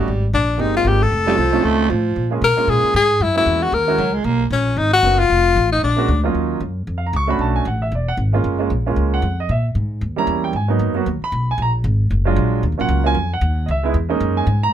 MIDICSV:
0, 0, Header, 1, 6, 480
1, 0, Start_track
1, 0, Key_signature, -6, "minor"
1, 0, Tempo, 261780
1, 127, Time_signature, 4, 2, 24, 8
1, 27011, End_track
2, 0, Start_track
2, 0, Title_t, "Tenor saxophone"
2, 0, Program_c, 0, 66
2, 625, Note_on_c, 0, 62, 82
2, 1109, Note_on_c, 0, 63, 82
2, 1136, Note_off_c, 0, 62, 0
2, 1379, Note_off_c, 0, 63, 0
2, 1404, Note_on_c, 0, 65, 90
2, 1609, Note_on_c, 0, 67, 89
2, 1637, Note_off_c, 0, 65, 0
2, 1879, Note_on_c, 0, 69, 102
2, 1906, Note_off_c, 0, 67, 0
2, 3300, Note_off_c, 0, 69, 0
2, 4473, Note_on_c, 0, 70, 90
2, 4941, Note_on_c, 0, 68, 97
2, 4969, Note_off_c, 0, 70, 0
2, 5409, Note_off_c, 0, 68, 0
2, 5427, Note_on_c, 0, 68, 96
2, 5910, Note_on_c, 0, 64, 92
2, 5937, Note_off_c, 0, 68, 0
2, 6176, Note_off_c, 0, 64, 0
2, 6186, Note_on_c, 0, 64, 84
2, 6657, Note_on_c, 0, 66, 85
2, 6684, Note_off_c, 0, 64, 0
2, 6853, Note_on_c, 0, 70, 86
2, 6881, Note_off_c, 0, 66, 0
2, 7608, Note_off_c, 0, 70, 0
2, 8299, Note_on_c, 0, 61, 82
2, 8760, Note_on_c, 0, 63, 92
2, 8787, Note_off_c, 0, 61, 0
2, 9031, Note_off_c, 0, 63, 0
2, 9042, Note_on_c, 0, 66, 109
2, 9515, Note_on_c, 0, 65, 106
2, 9543, Note_off_c, 0, 66, 0
2, 10477, Note_off_c, 0, 65, 0
2, 10494, Note_on_c, 0, 63, 86
2, 10670, Note_off_c, 0, 63, 0
2, 10701, Note_on_c, 0, 62, 79
2, 11399, Note_off_c, 0, 62, 0
2, 27011, End_track
3, 0, Start_track
3, 0, Title_t, "Grand piano"
3, 0, Program_c, 1, 0
3, 1057, Note_on_c, 1, 58, 52
3, 1058, Note_on_c, 1, 56, 57
3, 1059, Note_on_c, 1, 60, 50
3, 1079, Note_on_c, 1, 67, 63
3, 1080, Note_on_c, 1, 63, 55
3, 1523, Note_off_c, 1, 56, 0
3, 1530, Note_off_c, 1, 58, 0
3, 1531, Note_off_c, 1, 60, 0
3, 1538, Note_off_c, 1, 63, 0
3, 1541, Note_off_c, 1, 67, 0
3, 1550, Note_on_c, 1, 56, 59
3, 1558, Note_on_c, 1, 58, 54
3, 1559, Note_on_c, 1, 60, 54
3, 1565, Note_on_c, 1, 63, 56
3, 1566, Note_on_c, 1, 65, 67
3, 1811, Note_off_c, 1, 56, 0
3, 1815, Note_off_c, 1, 58, 0
3, 1816, Note_off_c, 1, 60, 0
3, 1819, Note_off_c, 1, 63, 0
3, 1819, Note_off_c, 1, 65, 0
3, 2318, Note_on_c, 1, 57, 65
3, 2319, Note_on_c, 1, 60, 61
3, 2332, Note_on_c, 1, 61, 61
3, 2336, Note_on_c, 1, 63, 63
3, 2342, Note_on_c, 1, 65, 72
3, 2498, Note_off_c, 1, 57, 0
3, 2499, Note_off_c, 1, 60, 0
3, 2505, Note_off_c, 1, 61, 0
3, 2508, Note_off_c, 1, 63, 0
3, 2511, Note_off_c, 1, 65, 0
3, 2789, Note_on_c, 1, 57, 75
3, 2801, Note_on_c, 1, 60, 62
3, 2809, Note_on_c, 1, 61, 64
3, 2813, Note_on_c, 1, 63, 64
3, 2825, Note_on_c, 1, 65, 72
3, 3433, Note_off_c, 1, 57, 0
3, 3439, Note_off_c, 1, 60, 0
3, 3443, Note_off_c, 1, 61, 0
3, 3445, Note_off_c, 1, 63, 0
3, 3451, Note_off_c, 1, 65, 0
3, 4225, Note_on_c, 1, 56, 70
3, 4237, Note_on_c, 1, 58, 58
3, 4251, Note_on_c, 1, 65, 59
3, 4253, Note_on_c, 1, 61, 60
3, 4260, Note_on_c, 1, 68, 76
3, 4410, Note_off_c, 1, 56, 0
3, 4416, Note_off_c, 1, 58, 0
3, 4423, Note_off_c, 1, 65, 0
3, 4425, Note_off_c, 1, 61, 0
3, 4428, Note_off_c, 1, 68, 0
3, 4696, Note_on_c, 1, 56, 69
3, 4704, Note_on_c, 1, 58, 62
3, 4717, Note_on_c, 1, 61, 62
3, 4722, Note_on_c, 1, 65, 66
3, 4728, Note_on_c, 1, 68, 73
3, 5346, Note_off_c, 1, 56, 0
3, 5350, Note_off_c, 1, 58, 0
3, 5356, Note_off_c, 1, 61, 0
3, 5359, Note_off_c, 1, 65, 0
3, 5362, Note_off_c, 1, 68, 0
3, 6135, Note_on_c, 1, 56, 54
3, 6145, Note_on_c, 1, 58, 49
3, 6151, Note_on_c, 1, 61, 52
3, 6167, Note_on_c, 1, 64, 52
3, 6174, Note_on_c, 1, 66, 61
3, 6785, Note_off_c, 1, 56, 0
3, 6789, Note_off_c, 1, 58, 0
3, 6793, Note_off_c, 1, 61, 0
3, 6800, Note_off_c, 1, 64, 0
3, 6804, Note_off_c, 1, 66, 0
3, 7095, Note_on_c, 1, 56, 68
3, 7109, Note_on_c, 1, 58, 63
3, 7111, Note_on_c, 1, 61, 64
3, 7120, Note_on_c, 1, 64, 63
3, 7131, Note_on_c, 1, 66, 78
3, 7285, Note_off_c, 1, 56, 0
3, 7291, Note_off_c, 1, 58, 0
3, 7292, Note_off_c, 1, 61, 0
3, 7297, Note_off_c, 1, 64, 0
3, 7302, Note_off_c, 1, 66, 0
3, 9237, Note_on_c, 1, 58, 60
3, 9245, Note_on_c, 1, 59, 58
3, 9248, Note_on_c, 1, 61, 54
3, 9254, Note_on_c, 1, 63, 54
3, 9260, Note_on_c, 1, 66, 71
3, 9491, Note_off_c, 1, 58, 0
3, 9495, Note_off_c, 1, 59, 0
3, 9497, Note_off_c, 1, 61, 0
3, 9500, Note_off_c, 1, 63, 0
3, 9503, Note_off_c, 1, 66, 0
3, 10935, Note_on_c, 1, 56, 71
3, 10943, Note_on_c, 1, 58, 65
3, 10955, Note_on_c, 1, 61, 68
3, 10963, Note_on_c, 1, 62, 63
3, 10976, Note_on_c, 1, 66, 80
3, 11124, Note_off_c, 1, 56, 0
3, 11128, Note_off_c, 1, 58, 0
3, 11134, Note_off_c, 1, 61, 0
3, 11138, Note_off_c, 1, 62, 0
3, 11145, Note_off_c, 1, 66, 0
3, 11434, Note_on_c, 1, 54, 72
3, 11447, Note_on_c, 1, 58, 66
3, 11450, Note_on_c, 1, 61, 66
3, 11461, Note_on_c, 1, 63, 62
3, 11468, Note_on_c, 1, 65, 79
3, 12074, Note_off_c, 1, 54, 0
3, 12081, Note_off_c, 1, 58, 0
3, 12082, Note_off_c, 1, 61, 0
3, 12087, Note_off_c, 1, 63, 0
3, 12091, Note_off_c, 1, 65, 0
3, 12793, Note_on_c, 1, 77, 64
3, 12931, Note_off_c, 1, 77, 0
3, 12953, Note_on_c, 1, 82, 68
3, 13091, Note_off_c, 1, 82, 0
3, 13137, Note_on_c, 1, 85, 96
3, 13336, Note_on_c, 1, 57, 71
3, 13349, Note_on_c, 1, 61, 67
3, 13361, Note_on_c, 1, 62, 66
3, 13371, Note_on_c, 1, 66, 78
3, 13382, Note_off_c, 1, 85, 0
3, 13392, Note_on_c, 1, 83, 87
3, 13568, Note_off_c, 1, 83, 0
3, 13588, Note_on_c, 1, 81, 74
3, 13848, Note_off_c, 1, 81, 0
3, 13856, Note_on_c, 1, 80, 78
3, 13986, Note_off_c, 1, 57, 0
3, 13992, Note_off_c, 1, 61, 0
3, 13998, Note_off_c, 1, 62, 0
3, 14004, Note_off_c, 1, 66, 0
3, 14039, Note_off_c, 1, 80, 0
3, 14073, Note_on_c, 1, 78, 68
3, 14331, Note_off_c, 1, 78, 0
3, 14338, Note_on_c, 1, 76, 76
3, 14521, Note_off_c, 1, 76, 0
3, 14578, Note_on_c, 1, 74, 69
3, 14823, Note_on_c, 1, 78, 87
3, 14824, Note_off_c, 1, 74, 0
3, 14935, Note_off_c, 1, 78, 0
3, 15267, Note_on_c, 1, 56, 66
3, 15279, Note_on_c, 1, 58, 65
3, 15291, Note_on_c, 1, 61, 65
3, 15301, Note_on_c, 1, 65, 78
3, 15716, Note_off_c, 1, 56, 0
3, 15725, Note_off_c, 1, 58, 0
3, 15740, Note_off_c, 1, 61, 0
3, 15744, Note_on_c, 1, 56, 70
3, 15748, Note_off_c, 1, 65, 0
3, 15753, Note_on_c, 1, 58, 63
3, 15767, Note_on_c, 1, 61, 62
3, 15776, Note_on_c, 1, 65, 69
3, 15930, Note_off_c, 1, 56, 0
3, 15935, Note_off_c, 1, 58, 0
3, 15942, Note_off_c, 1, 61, 0
3, 15946, Note_off_c, 1, 65, 0
3, 16254, Note_on_c, 1, 58, 64
3, 16255, Note_on_c, 1, 56, 71
3, 16262, Note_on_c, 1, 61, 65
3, 16277, Note_on_c, 1, 65, 75
3, 16754, Note_on_c, 1, 78, 82
3, 16886, Note_off_c, 1, 58, 0
3, 16887, Note_off_c, 1, 56, 0
3, 16890, Note_off_c, 1, 61, 0
3, 16898, Note_off_c, 1, 65, 0
3, 17186, Note_off_c, 1, 78, 0
3, 17238, Note_on_c, 1, 75, 77
3, 17412, Note_off_c, 1, 75, 0
3, 17439, Note_on_c, 1, 76, 76
3, 17695, Note_off_c, 1, 76, 0
3, 18634, Note_on_c, 1, 55, 70
3, 18646, Note_on_c, 1, 58, 66
3, 18658, Note_on_c, 1, 61, 65
3, 18666, Note_on_c, 1, 64, 71
3, 18674, Note_on_c, 1, 82, 97
3, 19107, Note_off_c, 1, 82, 0
3, 19144, Note_on_c, 1, 79, 80
3, 19277, Note_off_c, 1, 55, 0
3, 19283, Note_off_c, 1, 58, 0
3, 19289, Note_off_c, 1, 61, 0
3, 19293, Note_off_c, 1, 64, 0
3, 19326, Note_off_c, 1, 79, 0
3, 19361, Note_on_c, 1, 80, 74
3, 19590, Note_on_c, 1, 54, 67
3, 19606, Note_on_c, 1, 58, 62
3, 19609, Note_on_c, 1, 59, 64
3, 19617, Note_off_c, 1, 80, 0
3, 19624, Note_on_c, 1, 63, 77
3, 20041, Note_off_c, 1, 54, 0
3, 20053, Note_off_c, 1, 58, 0
3, 20059, Note_off_c, 1, 59, 0
3, 20067, Note_off_c, 1, 63, 0
3, 20069, Note_on_c, 1, 54, 72
3, 20080, Note_on_c, 1, 58, 67
3, 20097, Note_on_c, 1, 59, 66
3, 20105, Note_on_c, 1, 66, 74
3, 20255, Note_off_c, 1, 54, 0
3, 20260, Note_off_c, 1, 58, 0
3, 20268, Note_off_c, 1, 59, 0
3, 20272, Note_off_c, 1, 66, 0
3, 20608, Note_on_c, 1, 83, 96
3, 21035, Note_off_c, 1, 83, 0
3, 21103, Note_on_c, 1, 80, 82
3, 21267, Note_off_c, 1, 80, 0
3, 21309, Note_on_c, 1, 82, 89
3, 21459, Note_off_c, 1, 82, 0
3, 22469, Note_on_c, 1, 54, 78
3, 22480, Note_on_c, 1, 56, 73
3, 22495, Note_on_c, 1, 65, 85
3, 22496, Note_on_c, 1, 62, 72
3, 23116, Note_off_c, 1, 54, 0
3, 23122, Note_off_c, 1, 56, 0
3, 23129, Note_off_c, 1, 62, 0
3, 23129, Note_off_c, 1, 65, 0
3, 23428, Note_on_c, 1, 54, 63
3, 23442, Note_on_c, 1, 58, 56
3, 23444, Note_on_c, 1, 61, 57
3, 23453, Note_on_c, 1, 65, 67
3, 23485, Note_on_c, 1, 78, 95
3, 23883, Note_off_c, 1, 54, 0
3, 23895, Note_off_c, 1, 58, 0
3, 23898, Note_off_c, 1, 61, 0
3, 23902, Note_off_c, 1, 65, 0
3, 23910, Note_on_c, 1, 54, 68
3, 23914, Note_off_c, 1, 78, 0
3, 23922, Note_on_c, 1, 58, 62
3, 23933, Note_on_c, 1, 61, 57
3, 23940, Note_on_c, 1, 65, 69
3, 23955, Note_on_c, 1, 80, 105
3, 24096, Note_off_c, 1, 54, 0
3, 24102, Note_off_c, 1, 58, 0
3, 24107, Note_off_c, 1, 61, 0
3, 24111, Note_off_c, 1, 65, 0
3, 24389, Note_off_c, 1, 80, 0
3, 24451, Note_on_c, 1, 78, 87
3, 25048, Note_on_c, 1, 75, 59
3, 25061, Note_off_c, 1, 78, 0
3, 25083, Note_off_c, 1, 75, 0
3, 25136, Note_on_c, 1, 76, 88
3, 25366, Note_on_c, 1, 56, 77
3, 25382, Note_on_c, 1, 59, 67
3, 25386, Note_off_c, 1, 76, 0
3, 25397, Note_on_c, 1, 63, 68
3, 25403, Note_on_c, 1, 64, 81
3, 25545, Note_off_c, 1, 56, 0
3, 25553, Note_off_c, 1, 59, 0
3, 25560, Note_off_c, 1, 63, 0
3, 25563, Note_off_c, 1, 64, 0
3, 25831, Note_on_c, 1, 56, 73
3, 25845, Note_on_c, 1, 58, 72
3, 25845, Note_on_c, 1, 61, 70
3, 25860, Note_on_c, 1, 63, 86
3, 26352, Note_on_c, 1, 80, 86
3, 26478, Note_off_c, 1, 56, 0
3, 26485, Note_off_c, 1, 58, 0
3, 26485, Note_off_c, 1, 61, 0
3, 26493, Note_off_c, 1, 63, 0
3, 26789, Note_off_c, 1, 80, 0
3, 26833, Note_on_c, 1, 82, 106
3, 27011, Note_off_c, 1, 82, 0
3, 27011, End_track
4, 0, Start_track
4, 0, Title_t, "Baritone saxophone"
4, 0, Program_c, 2, 67
4, 0, Note_on_c, 2, 55, 83
4, 508, Note_off_c, 2, 55, 0
4, 2323, Note_on_c, 2, 55, 84
4, 2521, Note_on_c, 2, 53, 88
4, 2549, Note_off_c, 2, 55, 0
4, 2998, Note_on_c, 2, 57, 100
4, 3025, Note_off_c, 2, 53, 0
4, 3482, Note_on_c, 2, 53, 84
4, 3510, Note_off_c, 2, 57, 0
4, 4342, Note_off_c, 2, 53, 0
4, 7299, Note_on_c, 2, 54, 79
4, 7581, Note_on_c, 2, 56, 86
4, 7608, Note_off_c, 2, 54, 0
4, 7791, Note_on_c, 2, 58, 97
4, 7819, Note_off_c, 2, 56, 0
4, 8175, Note_off_c, 2, 58, 0
4, 27011, End_track
5, 0, Start_track
5, 0, Title_t, "Upright bass"
5, 0, Program_c, 3, 32
5, 142, Note_on_c, 3, 32, 75
5, 599, Note_off_c, 3, 32, 0
5, 611, Note_on_c, 3, 34, 85
5, 1073, Note_off_c, 3, 34, 0
5, 1089, Note_on_c, 3, 31, 76
5, 1542, Note_off_c, 3, 31, 0
5, 1553, Note_on_c, 3, 32, 86
5, 2023, Note_off_c, 3, 32, 0
5, 2046, Note_on_c, 3, 29, 74
5, 2509, Note_off_c, 3, 29, 0
5, 2525, Note_on_c, 3, 36, 84
5, 2988, Note_off_c, 3, 36, 0
5, 3001, Note_on_c, 3, 37, 77
5, 3466, Note_off_c, 3, 37, 0
5, 3481, Note_on_c, 3, 45, 82
5, 3946, Note_off_c, 3, 45, 0
5, 3958, Note_on_c, 3, 46, 75
5, 4418, Note_off_c, 3, 46, 0
5, 4429, Note_on_c, 3, 47, 80
5, 4696, Note_off_c, 3, 47, 0
5, 4905, Note_on_c, 3, 46, 80
5, 5174, Note_off_c, 3, 46, 0
5, 5392, Note_on_c, 3, 44, 90
5, 5856, Note_off_c, 3, 44, 0
5, 5867, Note_on_c, 3, 42, 82
5, 6333, Note_off_c, 3, 42, 0
5, 6344, Note_on_c, 3, 40, 89
5, 6816, Note_off_c, 3, 40, 0
5, 6823, Note_on_c, 3, 39, 82
5, 7295, Note_off_c, 3, 39, 0
5, 7303, Note_on_c, 3, 37, 83
5, 7767, Note_off_c, 3, 37, 0
5, 7778, Note_on_c, 3, 35, 84
5, 8248, Note_off_c, 3, 35, 0
5, 8259, Note_on_c, 3, 34, 85
5, 8726, Note_off_c, 3, 34, 0
5, 8737, Note_on_c, 3, 32, 80
5, 9212, Note_off_c, 3, 32, 0
5, 9220, Note_on_c, 3, 30, 84
5, 9693, Note_off_c, 3, 30, 0
5, 9715, Note_on_c, 3, 29, 84
5, 10181, Note_off_c, 3, 29, 0
5, 10194, Note_on_c, 3, 33, 87
5, 10660, Note_off_c, 3, 33, 0
5, 10685, Note_on_c, 3, 34, 78
5, 11141, Note_off_c, 3, 34, 0
5, 11152, Note_on_c, 3, 38, 91
5, 11620, Note_off_c, 3, 38, 0
5, 11636, Note_on_c, 3, 39, 72
5, 12102, Note_off_c, 3, 39, 0
5, 12110, Note_on_c, 3, 42, 82
5, 12579, Note_off_c, 3, 42, 0
5, 12599, Note_on_c, 3, 41, 80
5, 13063, Note_off_c, 3, 41, 0
5, 13076, Note_on_c, 3, 37, 88
5, 13535, Note_off_c, 3, 37, 0
5, 13546, Note_on_c, 3, 35, 77
5, 14017, Note_off_c, 3, 35, 0
5, 14031, Note_on_c, 3, 33, 82
5, 14500, Note_off_c, 3, 33, 0
5, 14515, Note_on_c, 3, 28, 77
5, 14974, Note_off_c, 3, 28, 0
5, 14985, Note_on_c, 3, 32, 86
5, 15457, Note_off_c, 3, 32, 0
5, 15475, Note_on_c, 3, 30, 81
5, 15943, Note_off_c, 3, 30, 0
5, 15955, Note_on_c, 3, 34, 86
5, 16423, Note_off_c, 3, 34, 0
5, 16434, Note_on_c, 3, 37, 82
5, 16896, Note_off_c, 3, 37, 0
5, 16907, Note_on_c, 3, 41, 85
5, 17379, Note_off_c, 3, 41, 0
5, 17401, Note_on_c, 3, 46, 82
5, 17867, Note_off_c, 3, 46, 0
5, 17878, Note_on_c, 3, 44, 85
5, 18345, Note_off_c, 3, 44, 0
5, 18359, Note_on_c, 3, 39, 80
5, 18820, Note_off_c, 3, 39, 0
5, 18831, Note_on_c, 3, 40, 85
5, 19297, Note_off_c, 3, 40, 0
5, 19308, Note_on_c, 3, 44, 81
5, 19781, Note_off_c, 3, 44, 0
5, 19790, Note_on_c, 3, 42, 80
5, 20262, Note_off_c, 3, 42, 0
5, 20284, Note_on_c, 3, 39, 83
5, 20547, Note_off_c, 3, 39, 0
5, 20756, Note_on_c, 3, 35, 88
5, 21218, Note_off_c, 3, 35, 0
5, 21229, Note_on_c, 3, 34, 85
5, 21702, Note_off_c, 3, 34, 0
5, 21709, Note_on_c, 3, 32, 92
5, 22182, Note_off_c, 3, 32, 0
5, 22196, Note_on_c, 3, 30, 84
5, 22658, Note_off_c, 3, 30, 0
5, 22669, Note_on_c, 3, 34, 93
5, 23142, Note_off_c, 3, 34, 0
5, 23158, Note_on_c, 3, 39, 81
5, 23326, Note_on_c, 3, 37, 60
5, 23353, Note_off_c, 3, 39, 0
5, 23452, Note_off_c, 3, 37, 0
5, 23463, Note_on_c, 3, 34, 72
5, 23616, Note_off_c, 3, 34, 0
5, 23627, Note_on_c, 3, 37, 94
5, 24091, Note_off_c, 3, 37, 0
5, 24102, Note_on_c, 3, 41, 87
5, 24579, Note_off_c, 3, 41, 0
5, 24592, Note_on_c, 3, 39, 97
5, 25065, Note_off_c, 3, 39, 0
5, 25091, Note_on_c, 3, 37, 85
5, 25554, Note_off_c, 3, 37, 0
5, 25562, Note_on_c, 3, 40, 90
5, 26030, Note_off_c, 3, 40, 0
5, 26045, Note_on_c, 3, 42, 90
5, 26512, Note_off_c, 3, 42, 0
5, 26527, Note_on_c, 3, 44, 97
5, 26993, Note_off_c, 3, 44, 0
5, 27011, End_track
6, 0, Start_track
6, 0, Title_t, "Muted upright bass strokes"
6, 4711, Note_on_c, 9, 29, 37
6, 4894, Note_off_c, 9, 29, 0
6, 5202, Note_on_c, 9, 29, 38
6, 5385, Note_off_c, 9, 29, 0
6, 20572, Note_on_c, 9, 29, 36
6, 20755, Note_off_c, 9, 29, 0
6, 27011, End_track
0, 0, End_of_file